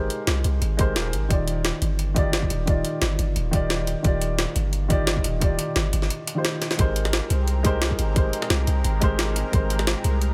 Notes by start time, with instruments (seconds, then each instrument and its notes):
Already playing: grand piano G#3 D#4 G4 A#4 C5
0.10 closed hi-hat
0.27 808-style bass C2, snare, closed hi-hat
0.44 808-style bass C2, closed hi-hat
0.62 808-style bass G#1, closed hi-hat
0.77 grand piano G#3 D#4 G4 A#4 C5, kick, closed hi-hat
0.96 808-style bass D#1, snare, closed hi-hat
1.13 808-style bass G#1, closed hi-hat
1.29 808-style bass D#1, grand piano D#3 D#4 F4 G4 D5, kick, closed hi-hat
1.48 closed hi-hat
1.65 snare, closed hi-hat
1.82 808-style bass G1, closed hi-hat
1.99 closed hi-hat
2.14 grand piano D#3 D#4 F4 G4 D5, kick, closed hi-hat
2.33 snare, closed hi-hat
2.42 kick
2.50 808-style bass D#1, closed hi-hat
2.66 grand piano D#3 D#4 F4 G4 D5, kick, closed hi-hat
2.85 closed hi-hat
3.02 808-style bass G1, snare, closed hi-hat
3.19 808-style bass G1, closed hi-hat
3.36 808-style bass D#1, closed hi-hat
3.51 grand piano D#3 D#4 F4 G4 D5, kick, closed hi-hat
3.70 snare, closed hi-hat
3.87 closed hi-hat
4.03 808-style bass D#1, grand piano D#3 D#4 F4 G4 D5, kick, closed hi-hat
4.21 closed hi-hat
4.39 snare, closed hi-hat
4.56 808-style bass G1, closed hi-hat
4.73 closed hi-hat
4.88 grand piano D#3 D#4 F4 G4 D5, kick, closed hi-hat
5.07 snare, closed hi-hat
5.17 kick
5.24 808-style bass D#1, closed hi-hat
5.40 grand piano D#3 D#4 F4 G4 D5, kick, closed hi-hat
5.59 closed hi-hat
5.76 808-style bass G1, snare, closed hi-hat
5.93 808-style bass G1, closed hi-hat
6.02 snare
6.10 closed hi-hat
6.27 closed hi-hat
6.35 grand piano D#3 D#4 F4 G4 C5
6.45 snare, closed hi-hat
6.62 snare, closed hi-hat
6.71 snare
6.77 808-style bass G#1, grand piano G#3 D#4 G4 A#4 C5, analog synth pad G#3 C4 G4 A#4, kick, closed hi-hat
6.96 closed hi-hat
7.05 snare
7.13 snare, closed hi-hat
7.30 808-style bass C2, closed hi-hat
7.48 closed hi-hat
7.63 grand piano G#3 D#4 G4 A#4 C5, kick, closed hi-hat
7.82 snare, closed hi-hat
7.91 kick
7.99 808-style bass G#1, closed hi-hat
8.14 grand piano G#3 D#4 G4 A#4 C5, kick, closed hi-hat
8.33 closed hi-hat
8.42 snare
8.50 808-style bass C2, snare, closed hi-hat
8.67 808-style bass C2, closed hi-hat
8.84 808-style bass G#1, closed hi-hat
9.00 grand piano G#3 D#4 G4 A#4 C5, kick, closed hi-hat
9.19 snare, closed hi-hat
9.36 closed hi-hat
9.51 808-style bass G#1, grand piano G#3 D#4 G4 A#4 C5, kick, closed hi-hat
9.70 closed hi-hat
9.79 snare
9.87 snare, closed hi-hat
10.04 808-style bass C2, closed hi-hat
10.22 closed hi-hat